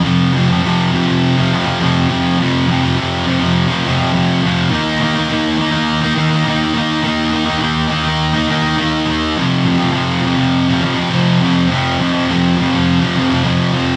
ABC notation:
X:1
M:4/4
L:1/16
Q:1/4=103
K:Eblyd
V:1 name="Distorted electric guitar" clef=bass
[F,,C,F,]2 [F,,C,F,] [C,F,] [F,,C,F,]2 [F,,C,F,] [C,F,]2 [C,F,] [F,,C,F,] [C,F,] [F,,C,F,]2 [F,,C,F,]2 | [F,,C,F,]2 [F,,C,F,] [C,F,] [F,,C,F,]2 [F,,C,F,] [C,F,]2 [C,F,] [F,,C,F,] [C,F,] [F,,C,F,]2 [F,,C,F,]2 | [E,B,E]2 [E,B,E] [B,E] [E,B,E]2 [E,B,E] [B,E]2 [B,E] [E,B,E] [B,E] [E,B,E]2 [E,B,E]2 | [E,B,E]2 [E,B,E] [B,E] [E,B,E]2 [E,B,E] [B,E]2 [B,E] [E,B,E] [B,E] [E,B,E]2 [E,B,E]2 |
[F,,C,F,]2 [F,,C,F,] [C,F,] [F,,C,F,]2 [F,,C,F,] [C,F,]2 [C,F,] [F,,C,F,] [C,F,] [F,,C,F,]2 [F,,C,F,]2 | [F,,C,F,]2 [F,,C,F,] [C,F,] [F,,C,F,]2 [F,,C,F,] [C,F,]2 [C,F,] [F,,C,F,] [C,F,] [F,,C,F,]2 [F,,C,F,]2 |]